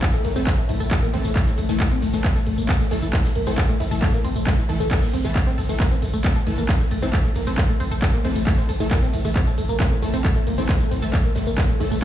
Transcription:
Already playing: A2 A3
0.02 A4, kick, snare, clap, closed hi-hat, tambourine, shaker
0.14 A3, tambourine
0.24 A1 A#3, open hi-hat, ride, shaker
0.36 A1 E3 A3 C4 A4, closed hi-hat, tambourine
0.46 A3, kick, clap, closed hi-hat, tambourine, shaker
0.58 A3, tambourine
0.69 A1 E4, open hi-hat, ride, shaker
0.80 A1 A4, closed hi-hat, tambourine
0.91 E3 A3 A4, kick, snare, clap, closed hi-hat, tambourine, shaker
1.02 A#3, closed hi-hat, tambourine
1.13 A1 E3 A3 C4 A4, open hi-hat, ride
1.25 A1 A3, closed hi-hat, tambourine
1.36 E3 A3 A4, kick, clap, closed hi-hat, tambourine, shaker
1.46 E4, snare, tambourine
1.58 A1 A4, open hi-hat, ride, shaker
1.69 A1 E3 A3 A4, snare, closed hi-hat, tambourine
1.80 A#3, kick, snare, clap, closed hi-hat, tambourine, shaker
1.91 C4, tambourine
2.02 A1 A3, open hi-hat, ride, shaker
2.13 A1 E3 A3 A4, closed hi-hat, tambourine
2.24 E4, kick, clap, closed hi-hat, tambourine, shaker
2.36 A4, closed hi-hat, tambourine
2.47 A1 A3, open hi-hat, ride
2.58 A1 A#3, closed hi-hat, tambourine
2.69 E3 A3 C4 A4, kick, snare, clap, closed hi-hat, tambourine, shaker
2.80 A3, tambourine
2.91 A1 E3 A3 A4, snare, open hi-hat, ride, shaker
3.02 A1 E4, closed hi-hat, tambourine
3.13 E3 A3 A4, kick, clap, closed hi-hat, tambourine, shaker
3.24 A3, snare, tambourine, shaker
3.36 A1 A#3, open hi-hat, ride
3.46 A1 E3 A3 C4 A4, closed hi-hat, tambourine, shaker
3.58 A3, kick, snare, clap, closed hi-hat, tambourine, shaker
3.69 A3, tambourine
3.80 A1 E4, open hi-hat, ride, shaker
3.91 A1 E3 A3 A4, closed hi-hat, tambourine
4.02 A3, kick, snare, clap, closed hi-hat, tambourine, shaker
4.13 A#3, tambourine
4.24 A1 C4, open hi-hat, ride, shaker
4.36 A1 A3, closed hi-hat, tambourine
4.47 E3 A3 A4, kick, snare, clap, closed hi-hat, tambourine, shaker
4.57 E4, closed hi-hat, tambourine
4.69 A1 E3 A3 A4, open hi-hat, ride
4.80 A1 A3, closed hi-hat, tambourine
4.90 A2 E3 A3 A4, kick, clap, closed hi-hat, tambourine, crash, shaker
5.02 A#3, snare, tambourine
5.13 A1 C4, open hi-hat, ride, shaker
5.24 A1 E3 A3 A4, snare, closed hi-hat, tambourine
5.35 A3, kick, snare, clap, closed hi-hat, tambourine, shaker
5.47 C4, tambourine
5.58 A1 A4, open hi-hat, ride, shaker
5.69 A1 E3 A3 A4, closed hi-hat, tambourine
5.80 A#3, kick, clap, closed hi-hat, tambourine, shaker
5.91 C4, closed hi-hat, tambourine
6.02 A1 A3, open hi-hat, ride, shaker
6.13 A1 A3, closed hi-hat, tambourine
6.24 E3 A3 C4 A4, kick, snare, clap, closed hi-hat, tambourine, shaker
6.36 A4, tambourine
6.46 A1 E3 A3 A4, open hi-hat, ride, shaker
6.58 A1 A#3, closed hi-hat, tambourine
6.69 E3 A3 C4 A4, kick, clap, closed hi-hat, tambourine, shaker
6.80 A3, tambourine
6.91 A1 A3, open hi-hat, ride, shaker
7.02 A1 E3 A3 C4 A4, closed hi-hat, tambourine
7.13 A4, kick, snare, clap, closed hi-hat, tambourine, shaker
7.25 A3, tambourine
7.35 A1 A#3, open hi-hat, ride, shaker
7.47 A1 E3 A3 C4 A4, closed hi-hat, tambourine
7.58 A3, kick, clap, closed hi-hat, tambourine, shaker
7.69 A3, tambourine
7.80 A1 C4, open hi-hat, ride, shaker
7.91 A1 A4, closed hi-hat, tambourine
8.02 E3 A3 A4, kick, snare, clap, closed hi-hat, tambourine, shaker
8.13 A#3, closed hi-hat, tambourine
8.24 A1 E3 A3 C4 A4, open hi-hat, ride
8.36 A1 A3, closed hi-hat, tambourine
8.47 E3 A3 A4, kick, clap, closed hi-hat, tambourine, shaker
8.58 C4, snare, tambourine
8.69 A1 A4, open hi-hat, ride, shaker
8.80 A1 E3 A3 A4, snare, closed hi-hat, tambourine
8.91 A#3, kick, snare, clap, closed hi-hat, tambourine, shaker
9.02 C4, tambourine
9.13 A1 A3, open hi-hat, ride, shaker
9.25 A1 E3 A3 A4, closed hi-hat, tambourine
9.36 C4, kick, clap, closed hi-hat, shaker
9.47 A4, closed hi-hat, tambourine
9.58 A1 A3, open hi-hat, ride, shaker
9.69 A1 A#3, closed hi-hat, tambourine
9.79 E3 A3 C4 A4, kick, snare, clap, closed hi-hat, tambourine, shaker
9.91 A3, tambourine
10.02 A1 E3 A3 A4, open hi-hat, ride, shaker
10.13 A1 C4, closed hi-hat, tambourine
10.24 E3 A3 A4, kick, clap, closed hi-hat, tambourine, shaker
10.36 A3, tambourine
10.47 A1 A#3, open hi-hat, ride, shaker
10.58 A1 E3 A3 C4 A4, closed hi-hat, tambourine
10.69 A3, kick, snare, clap, closed hi-hat, tambourine, shaker
10.80 A3, tambourine
10.91 A1 C4, open hi-hat, ride, shaker
11.02 A1 E3 A3 A4, closed hi-hat, tambourine
11.13 A3, kick, clap, closed hi-hat, tambourine, shaker
11.25 A#3, tambourine
11.35 A1 A3, snare, open hi-hat, ride, shaker
11.47 A1 A#3, closed hi-hat, tambourine
11.57 E3 A3 A#3 A4, kick, snare, clap, closed hi-hat, tambourine, shaker
11.69 A3, closed hi-hat, tambourine
11.80 A1 E3 A3 A4, open hi-hat, ride
11.91 A1 A3, closed hi-hat, tambourine

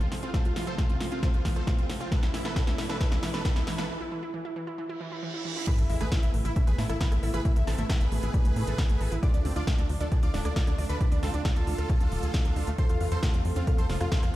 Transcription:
Already playing: C3 F3 A3 F4, riser
0.01 C4 F4, closed hi-hat
0.12 F3, snare, open hi-hat
0.23 C4 F4, closed hi-hat
0.34 F3 A4 C5, kick, snare, closed hi-hat
0.45 F4, closed hi-hat
0.56 E3 F4, snare, open hi-hat
0.67 F3 A4 C5, closed hi-hat
0.78 C3 F4, kick, snare, closed hi-hat
0.89 C4 F4, closed hi-hat
1.00 F3, snare, open hi-hat
1.12 C4 F4, closed hi-hat
1.23 F3 A4 C5, kick, snare, closed hi-hat
1.34 F4, closed hi-hat
1.45 E3 F4, kick, snare, open hi-hat
1.56 F3 A4 C5, closed hi-hat
1.67 C3 F4, kick, snare, closed hi-hat
1.78 C4 F4, closed hi-hat
1.89 F3, snare, open hi-hat
2.00 C4 F4, closed hi-hat
2.12 B2 E3 A3 E4 A4 B4, kick, snare, closed hi-hat
2.23 E4, snare, closed hi-hat
2.34 E3 E4, snare, open hi-hat
2.45 E3 A4 B4, snare, closed hi-hat
2.56 E3 A4 B4, kick, snare, closed hi-hat
2.67 E4, snare, closed hi-hat
2.78 E3 E4, snare, open hi-hat
2.89 E3 A4 B4, snare, closed hi-hat
3.01 E3 A4 B4, kick, snare, closed hi-hat
3.12 E4, snare, closed hi-hat
3.23 E3 E4, snare, open hi-hat
3.34 E3 A4 B4, snare, closed hi-hat
3.45 E3 A4 B4, kick, snare, closed hi-hat
3.56 E4, snare, closed hi-hat
3.67 E3 E4, snare, open hi-hat
3.78 E3 A4 B4, snare, closed hi-hat
3.89 E3
4.01 E4
4.12 E3
4.23 E4
4.34 E3
4.45 E4
4.56 E3
4.67 E4
4.78 E3, reverse cymbal
4.89 E4
5.01 E3
5.12 E4
5.23 E3
5.34 E4
5.45 E3
5.56 E4
5.67 C3 A3 B3 E4 G#4 B4 B5, kick, closed hi-hat, crash, sub drop
5.78 A1 E4 A4 E5, closed hi-hat
5.89 A1 G#3 E4 E5, open hi-hat
6.01 A1 A3 G#4 B4 B5, closed hi-hat
6.12 E3 E4 E5, kick, snare, closed hi-hat
6.23 A1 E4 E5, closed hi-hat
6.34 A1 A3, open hi-hat
6.45 A1 E4 E5, closed hi-hat
6.56 D4 E4 E5, kick, closed hi-hat
6.67 A1 A3 G#4 B4 B5, closed hi-hat
6.78 A2 A3 E4 E5, snare, open hi-hat
6.89 A1 E4 A4 E5, cross-stick, closed hi-hat
7.00 E3 G#4 B4 B5, kick, snare, closed hi-hat
7.11 A1 A3 E4 E5, cross-stick, closed hi-hat
7.23 A1 E4 A4 E5, open hi-hat
7.34 A1 E4 G#4 B4 B5, closed hi-hat
7.45 A3 E4 E5, kick, closed hi-hat
7.56 A1 E4 A4 E5, closed hi-hat
7.67 A1 G#3 C4 A4 A5, snare, open hi-hat
7.78 A1 A3 E4 E5, closed hi-hat
7.89 E3 E4 E5, kick, snare, closed hi-hat
8.00 A1 E4 G#4 B4 B5, closed hi-hat
8.12 A1 A3, open hi-hat
8.23 A1 E4, closed hi-hat
8.34 D4, kick, closed hi-hat
8.45 A1 A3, closed hi-hat
8.56 A2 A3, open hi-hat
8.67 A1 A4, closed hi-hat
8.78 E3, kick, snare, closed hi-hat
8.89 A1 A3, closed hi-hat
9.01 A1 A4, open hi-hat
9.12 A1 E4, closed hi-hat
9.23 D3 F3 A3 D4 F4 D5 D6, kick, closed hi-hat
9.34 D2 D4 D5, closed hi-hat
9.45 D2 C4 D4 D5, open hi-hat
9.56 D2 D4 F4 D5 D6, closed hi-hat
9.67 A3 D4 D5, kick, snare, closed hi-hat
9.78 D2 D4 A4 D5, closed hi-hat
9.89 D2 D4, open hi-hat
10.01 D2 D4 A4 D5, closed hi-hat
10.12 D4 G#4 D5, kick, closed hi-hat
10.23 D2 D4 F4 D5 D6, closed hi-hat
10.34 D1 D4 D5, snare, open hi-hat
10.45 D2 D4 D5, cross-stick, closed hi-hat
10.56 A3 F4 D5 D6, kick, snare, closed hi-hat
10.67 D2 D4 D5, cross-stick, closed hi-hat
10.78 D2 D4 D5, open hi-hat
10.89 D2 D4 A4 B4 B5, closed hi-hat
11.00 D4 D5, kick, closed hi-hat
11.12 D2 D4 D5, closed hi-hat
11.23 D2 C4 F4 A4 A5, snare, open hi-hat
11.34 D2 D4 D5, closed hi-hat
11.45 A3 D4 D5, kick, snare, closed hi-hat
11.56 D2 F4 A4 A5, closed hi-hat
11.67 D2 D4, open hi-hat
11.78 D2 A4, closed hi-hat
11.89 G#4, kick, closed hi-hat
12.01 D2 D4, closed hi-hat
12.12 D1 D4, open hi-hat
12.23 D2 G#4, closed hi-hat
12.34 D4, kick, snare, closed hi-hat
12.45 D2 D4, closed hi-hat
12.56 D2 D4, open hi-hat
12.67 D2 A3, closed hi-hat
12.78 C3 F3 A4 C5 C6, kick, closed hi-hat
12.89 F2 F4 F5, closed hi-hat
13.01 F2 E3 F4 F5, open hi-hat
13.12 F2 F3 A4 C5 C6, closed hi-hat
13.23 C3 F4 F5, kick, snare, closed hi-hat
13.34 F2 C4 F4 F5, closed hi-hat
13.45 F2 F3, open hi-hat
13.56 F2 C4 F4 F5, closed hi-hat
13.67 B3 F4 A4 F5, kick, closed hi-hat
13.78 F2 F3 A4 C5 C6, closed hi-hat
13.89 F1 F3 F4 F5, snare, open hi-hat
14.00 F2 F4 F5, cross-stick, closed hi-hat
14.12 C3 A4 C5 C6, kick, snare, closed hi-hat
14.23 F2 F3 F4 F5, cross-stick, closed hi-hat

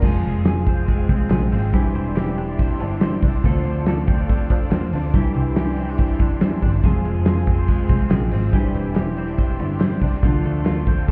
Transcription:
0.02 F1 F3 G#3 C4 F4 G#4 C5 F5 C6, kick, crash
0.23 F1 G#3, ride
0.45 F3 G#3 C4 F4 G#4, snare, clap, ride
0.66 C4, kick, ride
0.88 G#3, kick, ride
1.09 C2 G#3 C4 F4, kick, ride
1.30 A#1 F3 G#3 C4 F4, snare, clap, ride
1.51 G#1 G#3 C4 F4, open hi-hat, ride
1.73 E1 E3 G3 D4 E4 G4 C5 D5 E5, kick, hi-hat pedal, ride
1.95 E1 C4, ride
2.16 G3 D4 E4 G4 C5, snare, clap, ride
2.38 D4, ride
2.59 C4, kick, ride
2.80 G1 D4 E4 C5, ride
3.01 G3 C4 D4 E4 C5, snare, clap, ride
3.22 C2 D4 E4 C5, kick, open hi-hat, ride
3.44 D2 D3 F3 A3 C4 F4 A4 C5 F5, kick, hi-hat pedal, ride
3.65 D2 C4, ride
3.86 A3 C4 F4 A4 C5, snare, clap, ride
4.07 C4, kick, ride
4.20 D4
4.29 C4, kick, ride
4.50 F2 C4 D4 F4 C5, kick, snare, ride
4.71 E2 A3 C4 F4 C5, snare, clap, ride
4.93 D2 C4 D4 F4 C5, open hi-hat, ride
5.14 C2 C3 E3 G3 D4 E4 G4 E5 C6, kick, hi-hat pedal, ride
5.35 C2 C4, ride
5.56 E3 G3 D4 G4, snare, clap, ride
5.60 E4
5.77 C4, ride
5.89 D4
5.98 C4, kick, ride
6.19 E2 G3 D4 E4, kick, ride
6.41 E3 G3 C4 D4, snare, clap, ride
6.45 E4
6.62 G1 G3 D4 E4, kick, open hi-hat, ride
6.84 F1 F3 G#3 C4 F4 G#4 C5 F5 C6, kick, hi-hat pedal, ride
7.05 F1 G#3, ride
7.25 F3 G#3 C4 F4 G#4, snare, clap, ride
7.47 C4, kick, ride
7.68 G#3, kick, ride
7.89 C2 C4 F4, kick, snare, ride
7.93 G#3
8.10 A#1 F3 G#3 C4 F4, snare, clap, ride
8.31 G#1 G#3 C4 F4, open hi-hat, ride
8.53 E1 E3 G3 D4 E4 G4 C5 D5 E5 C6, kick, hi-hat pedal, ride
8.74 E1 C4, ride
8.95 G3 D4 E4 G4 C5, snare, clap, ride
9.17 C4, ride
9.28 D4
9.38 C4, kick, ride
9.59 G1 D4 E4 C5, ride
9.80 G3 C4 D4 E4 C5, snare, clap, ride
10.01 C2 D4 E4 C5, kick, open hi-hat, ride
10.23 D2 D3 F3 C4 D4 F4 A4 F5, kick, hi-hat pedal, ride
10.44 D2 A3, ride
10.65 F3 C4 D4 F4 A4, snare, clap, ride
10.87 C4, kick, ride
11.08 kick, ride

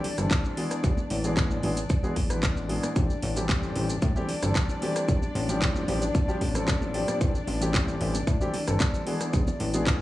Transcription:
Already playing: D4 D5
0.04 open hi-hat, muted conga, low conga
0.18 G1 E3 G3 A3 C4 A4, cross-stick, closed hi-hat, shaker
0.31 kick, clap, closed hi-hat, muted conga, shaker
0.45 shaker
0.57 E3 G#3 B3 D4 G#4, open hi-hat
0.71 cross-stick, closed hi-hat, muted conga, shaker
0.83 A1 E3 G#3 B3 D4 G#4, kick, closed hi-hat, shaker
0.97 muted conga, shaker
1.10 A1, open hi-hat, high conga
1.24 E3 G#3 B3 D4 G#4, closed hi-hat, shaker
1.37 kick, clap, closed hi-hat, muted conga, shaker
1.51 high conga, shaker
1.63 A1 E3 G#3 B3 D4 G#4, open hi-hat, muted conga
1.77 closed hi-hat, shaker
1.90 kick, closed hi-hat, shaker
2.03 E3 G#3 B3 D4 G#4, muted conga, shaker
2.16 A1, kick, open hi-hat, high conga, low conga
2.30 E3 G#3 B3 D4 B4, cross-stick, closed hi-hat, muted conga, shaker
2.43 kick, clap, closed hi-hat, shaker
2.57 shaker
2.69 E3 G#3 B3 D4 G#4, open hi-hat, muted conga
2.83 cross-stick, closed hi-hat, high conga, shaker
2.95 A1 E3 G3 A3 C4 D4 G4 D5, kick, closed hi-hat, shaker
3.10 shaker
3.22 A1, open hi-hat, muted conga
3.36 E3 G3 A3 C4 G4, closed hi-hat, shaker
3.49 kick, clap, closed hi-hat, muted conga, shaker
3.63 shaker
3.75 A1 E3 G3 A3 C4 G4, open hi-hat
3.90 closed hi-hat, muted conga, shaker
4.02 A2, kick, closed hi-hat, shaker
4.15 E3 G3 A3 C4 G4, muted conga, shaker
4.29 open hi-hat, low conga
4.42 G1 E3 G3 A3 C4 A4, cross-stick, closed hi-hat, shaker
4.55 kick, clap, closed hi-hat, muted conga, shaker
4.69 shaker
4.81 E3 G3 A3 C4 G4, open hi-hat, muted conga
4.96 cross-stick, closed hi-hat, shaker
5.08 A1 F3 G3 C4 D4, kick, closed hi-hat, shaker
5.22 muted conga, shaker
5.35 A1, open hi-hat, high conga
5.49 F3 G3 C4 D4 G4, closed hi-hat, muted conga, shaker
5.62 kick, clap, closed hi-hat, shaker
5.75 high conga, shaker
5.88 A1 F3 G3 C4 D4 G4, open hi-hat, muted conga
6.02 closed hi-hat, shaker
6.14 kick, closed hi-hat, muted conga, shaker
6.28 F3 G3 C4 D4 G4, shaker
6.41 A1, kick, open hi-hat, high conga, low conga
6.55 F3 G3 C4 D4 A4, cross-stick, closed hi-hat, muted conga, shaker
6.68 kick, clap, closed hi-hat, shaker
6.82 muted conga, shaker
6.94 F3 G3 C4 D4 G4, open hi-hat
7.08 cross-stick, closed hi-hat, high conga, shaker
7.21 A1 E3 G3 A3 C4 G4, kick, closed hi-hat, muted conga, shaker
7.35 shaker
7.47 A1, open hi-hat, muted conga
7.61 E3 G3 A3 C4 G4, closed hi-hat, shaker
7.74 kick, clap, closed hi-hat, shaker
7.88 muted conga, shaker
8.00 A1 E3 G3 A3 C4 G4, open hi-hat
8.15 closed hi-hat, muted conga, shaker
8.27 A2, kick, closed hi-hat, shaker
8.41 E3 G3 A3 C4 G4, shaker
8.53 open hi-hat, muted conga, low conga
8.67 G1 E3 G3 A3 C4 A4, cross-stick, closed hi-hat, shaker
8.80 kick, clap, closed hi-hat, muted conga, shaker
8.94 shaker
9.07 E3 G#3 B3 D4 G#4, open hi-hat
9.20 cross-stick, closed hi-hat, muted conga, shaker
9.33 A1 E3 G#3 B3 D4 G#4, kick, closed hi-hat, shaker
9.47 muted conga, low conga, shaker
9.60 A1, open hi-hat, high conga
9.74 E3 G#3 B3 D4 G#4, closed hi-hat, shaker
9.87 kick, clap, closed hi-hat, muted conga, shaker

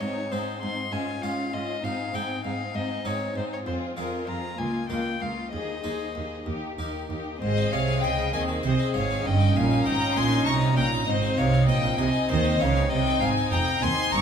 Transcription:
0.00 G#2 G#3 C4 D#4 G#4 C#5
0.31 G#2 C4 D#4 G#4 C5
0.62 G#2 C4 D#4 G#4 C6
0.91 G#2 G#3 C#4 F4 G#4 G#5
1.22 G#2 C#4 F4 G#4 F5
1.53 G#2 C#4 F4 G#4 D#5
1.83 G#2 G#3 C4 D#4 G#4 F5
2.14 G#2 C4 D#4 G#4 G5
2.44 G#2 C4 D#4 G#4 F5
2.75 G#2 C4 D#4 G#4 D#5
3.05 G#2 C4 D#4 G#4 C#5
3.36 G#2 C4 D#4 G#4 C5
3.53 C#5
3.66 F2 C4 F4 G#4 C5
3.97 F2 C4 F4 G#4 A#4
4.27 F2 C4 F4 G#4 A#5
4.58 C#2 A#3 F4 A#4 G#5
4.89 C#2 A#3 F4 A#4 G5
5.21 C#2 A#3 F4 A#4 F5
5.52 D#2 D#4 G#4 C5 D#5
5.83 D#2 D#4 G#4 C5
6.14 D#2 D#4 G#4 C5
6.46 D#2 D#4 G4 A#4
6.77 D#2 D#4 G4 A#4
7.10 D#2 D#4 G4 A#4
7.39 G#1 G#2 C4 G#4 C5 D#5
7.57 D#4
7.71 C2 C3 G#4 C#5 F5
7.88 D#4
8.02 C#2 C#3 D#5 G5
8.18 F5
8.33 D#2 D#3 C4 G#4 D#5 G#5
8.48 D#4
8.63 C2 C3 C5 D#5
8.79 D#4
8.94 G#1 G#2 G#4 C#5 F5
9.10 D#4
9.25 G1 G2 C#4 D#4 D#5 G5
9.40 D#4
9.56 A#1 A#2 A#4 F5 G#5
9.71 D#4
9.85 G#1 G#2 D#5 G5 A#5
10.01 F5
10.16 A#1 A#2 D#5 G#5 C6
10.32 D#4
10.46 C2 C3 D#5 A#5 C#6
10.61 D#4
10.77 A#1 A#2 A#4 G5 A#5
10.93 D#4
11.07 G#1 G#2 C4 D#4 C5 D#5
11.22 D#4
11.38 C2 C3 G#4 C#5 F5
11.53 D#4
11.68 A#1 A#2 D#5 G5
11.84 F5
11.98 C2 C3 C4 D#4 D#5 G#5
12.13 D#4
12.29 D#2 D#3 C5 D#5
12.44 D#4
12.60 C#2 C#3 G#4 C#5 F5
12.76 D#4
12.90 C2 C3 C4 D#4 D#5 G5
13.07 D#4
13.20 G#1 G#2 G#4 F5 G#5
13.37 D#4
13.51 F1 F2 D#5 G5 A#5
13.68 F5
13.81 D#2 C4 D#4 D#5 G#5 C6
13.98 D#4
14.12 G1 G2 D#5 A#5 C#6

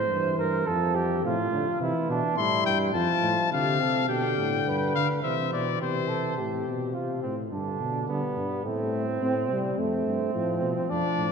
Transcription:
Already playing: A2 C5
0.10 G2 E3
0.38 G2 A#4
0.67 F2 F3 A4
0.95 G4
1.24 A2 C3 F4
1.51 A2 D3
1.80 C3 E3 E4
2.08 B2 D4
2.36 A2 G3 E4 C6
2.66 G2 G5
2.94 F2 F3 F4 A5
3.23 A2
3.51 C3 D3 G4 F5
3.80 C3 A4
4.08 B2 D3 G4 G5
4.37 A2
4.66 G2 B4
4.95 D3 F5
5.23 C3 E3 C5 E5
5.52 B2 D5
5.80 C3 G4 C5
6.08 A4
6.37 A2 C3 G4
6.67 B2
6.93 C3 F4
7.23 A2 C4
7.51 G2 D3 D4
7.80 B2
8.08 D3 G3 B3
8.37 G2
8.64 A2 A3 C4
9.21 A2 C4
9.50 C3 G3
9.77 F2 A3 C4
10.06 G2
10.34 A2 F3
10.62 B2
10.90 F2 F3 D4 D5
11.18 A2

